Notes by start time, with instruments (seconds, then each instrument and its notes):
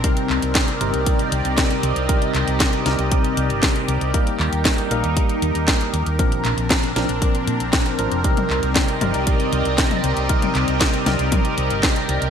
Already playing: analog synth pad C4 A#4
0.04 tine electric piano C3 G3 C4 D#4 A#4, analog synth pad G4 D5 D#5, kick, closed hi-hat
0.17 closed hi-hat
0.30 fingered electric bass C2, clap
0.42 fingered electric bass C2, closed hi-hat
0.55 kick, snare, clap, closed hi-hat
0.68 closed hi-hat
0.81 fingered electric bass G1, tine electric piano C3 G3 C4 D#4 A#4, closed hi-hat
0.94 fingered electric bass C2, closed hi-hat
1.06 kick, closed hi-hat
1.19 closed hi-hat
1.32 fingered electric bass C2, closed hi-hat
1.45 fingered electric bass C2, closed hi-hat
1.58 kick, snare, clap, closed hi-hat
1.71 closed hi-hat
1.83 fingered electric bass C2, closed hi-hat
1.96 fingered electric bass C2, closed hi-hat
2.09 tine electric piano C3 G3 C4 D#4 A#4, kick, closed hi-hat
2.22 closed hi-hat
2.35 fingered electric bass C2, clap, closed hi-hat
2.47 fingered electric bass C2, closed hi-hat
2.60 kick, snare, clap, closed hi-hat
2.73 closed hi-hat
2.86 fingered electric bass C2, tine electric piano C3 G3 C4 D#4 A#4, snare, closed hi-hat
2.99 fingered electric bass C2, closed hi-hat
3.12 kick, closed hi-hat
3.24 closed hi-hat
3.37 fingered electric bass C2, closed hi-hat
3.50 fingered electric bass G1, closed hi-hat
3.63 kick, snare, clap, closed hi-hat
3.76 closed hi-hat
3.88 fingered electric bass C2, closed hi-hat
4.01 fingered electric bass C2, closed hi-hat
4.14 tine electric piano G3 A#3 D#4 A#4, analog synth pad D#4 A#4, kick, closed hi-hat
4.27 closed hi-hat
4.40 fingered electric bass D#2, clap
4.52 fingered electric bass D#2, closed hi-hat
4.65 kick, snare, clap, closed hi-hat
4.78 closed hi-hat
4.91 fingered electric bass A#1, tine electric piano G3 A#3 D#4 A#4, closed hi-hat
5.04 fingered electric bass D#2, closed hi-hat
5.17 kick, closed hi-hat
5.29 closed hi-hat
5.42 fingered electric bass D#2, closed hi-hat
5.55 fingered electric bass D#2, closed hi-hat
5.68 kick, snare, clap, closed hi-hat
5.81 closed hi-hat
5.94 fingered electric bass D#2, closed hi-hat
6.06 fingered electric bass D#2, closed hi-hat
6.19 tine electric piano A#2 F3 C4 D4 A#4, analog synth pad C4 D4, kick, closed hi-hat
6.32 closed hi-hat
6.45 fingered electric bass A#1, clap, closed hi-hat
6.58 fingered electric bass A#1, closed hi-hat
6.70 kick, snare, clap, closed hi-hat
6.83 closed hi-hat
6.96 fingered electric bass A#1, tine electric piano A#2 F3 C4 D4 A#4, snare, closed hi-hat
7.09 fingered electric bass A#1, closed hi-hat
7.22 kick, closed hi-hat
7.35 closed hi-hat
7.47 fingered electric bass A#2, closed hi-hat
7.60 fingered electric bass A#1, closed hi-hat
7.73 kick, snare, clap, closed hi-hat
7.86 closed hi-hat
7.99 fingered electric bass G#1, tine electric piano F3 C4 D4 A#4, closed hi-hat
8.12 fingered electric bass F1, closed hi-hat
8.24 tine electric piano C3 G3 C4 D#4 A#4, analog synth pad G4 D5 D#5, kick, closed hi-hat
8.37 closed hi-hat, high tom
8.50 fingered electric bass C2, clap
8.63 fingered electric bass C2, closed hi-hat
8.76 kick, snare, clap, closed hi-hat
8.88 closed hi-hat
9.01 fingered electric bass G1, tine electric piano C3 G3 C4 D#4 A#4, closed hi-hat, high tom
9.14 fingered electric bass C2, closed hi-hat
9.27 kick, closed hi-hat
9.40 closed hi-hat
9.53 fingered electric bass C2, closed hi-hat
9.65 fingered electric bass C2, closed hi-hat
9.78 kick, snare, clap, closed hi-hat
9.91 closed hi-hat, high tom
10.04 fingered electric bass C2, closed hi-hat
10.17 fingered electric bass C2, closed hi-hat
10.29 tine electric piano C3 G3 C4 D#4 A#4, kick, closed hi-hat
10.42 closed hi-hat, high tom
10.55 fingered electric bass C2, clap, closed hi-hat
10.68 fingered electric bass C2, closed hi-hat
10.81 kick, snare, clap, closed hi-hat
10.94 closed hi-hat
11.06 fingered electric bass C2, tine electric piano C3 G3 C4 D#4 A#4, snare, closed hi-hat, high tom
11.19 fingered electric bass C2, closed hi-hat
11.32 kick, closed hi-hat, high tom
11.45 closed hi-hat
11.58 fingered electric bass C2, closed hi-hat
11.70 fingered electric bass G1, closed hi-hat
11.83 kick, snare, clap, closed hi-hat
11.96 closed hi-hat
12.09 fingered electric bass C2, closed hi-hat
12.22 fingered electric bass C2, closed hi-hat